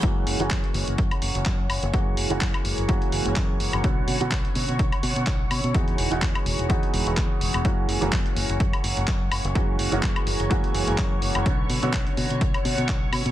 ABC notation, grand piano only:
X:1
M:4/4
L:1/16
Q:"Swing 16ths" 1/4=126
K:F#mix
V:1 name="Grand piano"
[E,G,A,CF]3 [E,G,A,CF]12- [E,G,A,CF] | [E,G,A,CF]3 [E,G,A,CF]4- [E,G,A,CF] [E,G,A,CF]8 | [=D,F,B,CF]3 [D,F,B,CF]12- [D,F,B,CF] | [E,G,B,DF]3 [E,G,B,DF]4- [E,G,B,DF] [E,G,B,DF]8 |
[E,G,A,CF]3 [E,G,A,CF]12- [E,G,A,CF] | [E,G,A,CF]3 [E,G,A,CF]4- [E,G,A,CF] [E,G,A,CF]8 | [=D,F,B,CF]3 [D,F,B,CF]12- [D,F,B,CF] |]